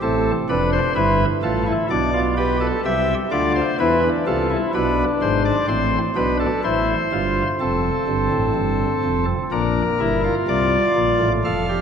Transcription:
0.02 A1 A2 C4 A4
0.49 F1 F2 D4 B4
0.72 C5
0.96 G1 G2 E4 B4
1.43 A1 A2 F4 A4
1.66 E4
1.90 B1 B2 D4 D5
2.14 F4
2.37 G4 B4
2.60 A4
2.85 C2 C3 G4 E5
3.31 D2 D3 F4 D5
3.55 C5
3.79 E2 E3 E4 B4
4.03 D4
4.27 C2 C3 F4 A4
4.50 E4
4.74 B1 B2 D4 B4
5.22 G#1 G#2 C5
5.45 D5
5.68 A1 A2 C4 C5
6.16 B1 B2 D4 B4
6.40 A4
6.64 A1 A2 E4 C5
7.12 G1 G2 F4
7.60 F1 F2 C4 A4
8.08 G1 G2
8.32 A1 A2
8.55 G1 G2
9.04 F1 F2
9.52 A#1 A#2 D4 A#4
10.00 G1 G2 E4
10.24 F4
10.48 C2 C3 D5
10.96 A#1 A#2
11.20 A1 A2
11.44 F1 F2 A4 F5
11.69 G4

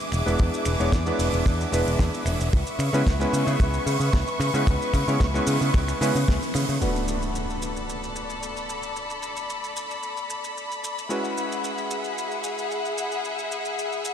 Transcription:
Already playing: G#3 B3 D4 E4 G#4 B4 E5 D6
0.12 E1, finger snap, open hi-hat, shaker
0.26 E1 G#3 B3 D4 E4 B4, shaker
0.39 E2, kick, shaker
0.54 shaker
0.65 E1, finger snap, open hi-hat, shaker
0.80 E1 G#3 B3 D4 E4 C#5, shaker
0.92 E2, kick, snare, shaker
1.06 G#3 B3 D4 E4 B4, shaker
1.19 E1, open hi-hat, shaker
1.33 E1, shaker
1.46 E2, kick, shaker
1.61 shaker
1.72 E1 G#3 B3 D4 E4 B4, open hi-hat, shaker
1.86 E1, shaker
1.99 E2, kick, snare, shaker
2.14 shaker
2.26 E1, finger snap, open hi-hat, shaker
2.40 E1, shaker
2.52 C#2 B4 C#6, kick, shaker
2.67 shaker
2.79 C#3, finger snap, open hi-hat, shaker
2.93 C#3 G#3 B3 C#4 E4 B4, shaker
3.06 C#2, kick, snare, shaker
3.20 G#3 B3 C#4 E4 B4, shaker
3.33 C#3, open hi-hat, shaker
3.47 C#3, shaker
3.60 C#2, kick, shaker
3.74 shaker
3.86 C#3, open hi-hat, shaker
4.00 C#3, shaker
4.13 C#2, kick, snare, shaker
4.27 shaker
4.40 C#3, finger snap, open hi-hat, shaker
4.54 C#3 G#3 B3 C#4 E4 B4, shaker
4.67 C#2, kick, shaker
4.82 shaker
4.93 C#3, finger snap, kick, open hi-hat, shaker
5.08 C#3 G#3 B3 C#4 E4 C#5, shaker
5.20 C#2, kick, snare, shaker
5.34 G#3 B3 C#4 E4 B4, shaker
5.47 C#3, open hi-hat, shaker
5.61 C#3, shaker
5.74 C#2, kick, snare, shaker
5.88 finger snap, shaker
6.01 C#3 G#3 B3 C#4 E4 B4, open hi-hat, shaker
6.15 C#3, shaker
6.28 C#2, kick, snare, shaker
6.42 shaker
6.54 C#3, finger snap, open hi-hat, shaker
6.69 C#3, open hi-hat, shaker
6.80 A3 B3 D4 F#4 A4 B4 D5 B5, impact, shaker
6.96 shaker
7.08 shaker
7.22 shaker
7.35 shaker
7.50 shaker
7.62 shaker
7.76 shaker
7.89 shaker
8.03 shaker
8.16 shaker
8.30 shaker
8.43 shaker
8.57 shaker
8.69 shaker
8.83 shaker
8.96 shaker
9.10 shaker
9.22 shaker
9.37 shaker
9.50 shaker
9.64 shaker
9.76 shaker
9.91 shaker
10.03 shaker
10.17 shaker
10.30 shaker
10.44 shaker
10.57 shaker
10.72 shaker
10.84 shaker
10.98 shaker
11.09 G#3 C#4 E4 F#4 G#4 B4 E5 F#5, shaker
11.24 shaker
11.37 shaker
11.52 shaker
11.64 shaker
11.78 shaker
11.91 shaker
12.04 shaker
12.18 shaker
12.31 shaker
12.44 shaker
12.59 shaker
12.71 shaker
12.85 shaker
12.98 shaker
13.12 shaker
13.25 shaker
13.39 shaker
13.51 shaker
13.65 shaker
13.79 shaker
13.92 shaker
14.05 shaker

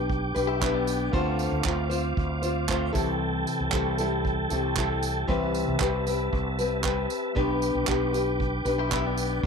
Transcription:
Already playing: B1 D4 G4 B4 G5 D6
0.10 kick
0.35 B1 D4 G4 B4, tambourine
0.47 E4 G4
0.60 B3 D4 E4 G4 B4, kick, clap
0.74 B3 D4
0.87 tambourine
1.12 D2 D3 A3 C4 F4 C5 F5, kick
1.39 tambourine
1.52 D2
1.64 D2 A3 C4 F4 C5, kick, clap
1.90 C4 F4 C5, tambourine
2.17 D2, kick
2.42 C4 F4 C5, tambourine
2.68 A3 C4 F4 C5, kick, clap
2.93 C2 C3 E3 G3 C4 E4 A4 G5 A5, kick, tambourine
3.47 tambourine
3.60 C2
3.71 C2 G3 C4 E4 A4, kick, clap
3.98 G3 C4 E4 A4, tambourine
4.25 kick
4.50 C2 G3 C4 E4 A4, tambourine
4.76 G3 C4 E4 A4, kick, clap
5.03 tambourine
5.27 C2 C3 E3 G3 C4 G4 B4 E5, kick
5.54 tambourine
5.68 C2
5.80 C2 G3 C4 G4 B4, kick, clap
6.06 G3 C4 G4 B4, tambourine
6.33 C2, kick
6.59 G3 C4 G4 B4, tambourine
6.83 G3 C4 G4 B4, kick, clap
7.10 tambourine
7.35 B1 B3 D4 G4 B4 G5 D6, kick
7.62 tambourine
7.75 B1
7.87 B1 B3 D4 G4 B4, kick, clap
8.13 D4 G4 B4, tambourine
8.40 kick
8.65 B1 D4 G4 B4, tambourine
8.79 E4 G4
8.91 B3 D4 E4 G4 B4, kick, clap
9.07 B3 D4
9.17 tambourine

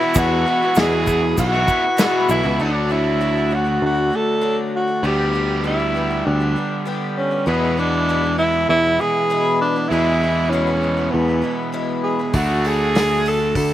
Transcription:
Already playing: E2 B2 E4
0.01 E3 B3 E4 F#4
0.14 E2 B2 E3 B3 E4 F#4, kick, crash, shaker
0.30 E3 B3 E4 F#4
0.46 E3 B3 E4 F#4
0.62 E3 B3 E4 F#4
0.75 E2 B2 E3 B3 E4 F#4 G#4, snare, crash, shaker
0.91 E3 B3 E4 F#4
1.07 E3 B3 E4 F#4, kick, shaker
1.22 muted overdriven electric guitar stroke
1.37 B1 F#4, kick, crash, shaker
1.53 E3 B3 E4 F#4
1.68 E3 B3 E4 F#4, kick, shaker
1.84 muted overdriven electric guitar stroke
1.97 E2 B2 E3 B3 E4 F#4, snare, crash, shaker
2.29 B1 E3 B3 E4 F#4, shaker
2.43 C#2 E3 B3 E4 F#4
2.59 D2 D3 F#3 A3 D4 F#4
2.89 F#3 A3 D4 E4 F#4
3.20 D3 F#3 A3 D4 F#4
3.36 A3 D4 F#4
3.50 F#3 A3 D4 F#4
3.65 A3 D4 F#4
3.82 D2 F#4
3.95 A3 D4 F#4
4.10 F#3 A3 D4 F#4
4.16 A4
4.41 D3 F#3 A3 D4 F#4
4.76 F#4
4.88 A3 D4 F#4
5.03 D2 D3 G3 B3 G4
5.33 D3 G3 B3 G4
5.64 D3 G3 B3 E4 G4
5.79 G3 B3 G4
5.95 D3 G3 B3 G4
6.10 G3 B3 G4
6.26 D2 D4
6.40 G3 B3 G4
6.56 D3 G3 B3 G4
6.85 D3 G3 B3 G4
7.17 C#4
7.31 G3 B3 G4
7.46 E2 B2 E3 G#3 B3 E4 G#4
7.77 E3 G#3 B3 D4 E4
8.09 E2 B2 E3 G#3 B3 E4
8.24 E3 G#3 B3 E4
8.38 E3 G#3 B3 E4
8.52 E3 G#3 B3 E4
8.69 E2 E4
8.84 E3 G#3 B3 E4
8.99 E3 G#3 B3 E4 G#4
9.30 E2 B2 E3 G#3 B3 E4
9.61 D4
9.76 E3 G#3 B3 E4
9.89 E2 B2 E3 E4 G#4
9.93 G#3 B3 E4
10.21 E3 G#3 B3 E4
10.50 E2 B2 E3 B3 C#4
10.54 G#3 E4
10.67 E3 G#3 B3 E4
10.82 E3 G#3 B3 E4
10.97 E3 G#3 B3 E4
11.11 E2 B3
11.28 E3 G#3 B3 E4
11.42 E3 G#3 B3 E4
11.72 E2 B2 E3 G#3 B3 E4
12.03 G#4
12.19 E3 G#3 B3 E4
12.33 D2 D3 A3 D4 F#4, kick, open hi-hat
12.65 D3 A3 D4 F#4 G#4, open hi-hat
12.95 D3 A3 D4 F#4, snare, open hi-hat
13.11 A3 D4 F#4
13.26 D3 A3 D4 F#4 A4, open hi-hat
13.41 A3 D4 F#4
13.55 D2 A4, kick, open hi-hat
13.71 F#4

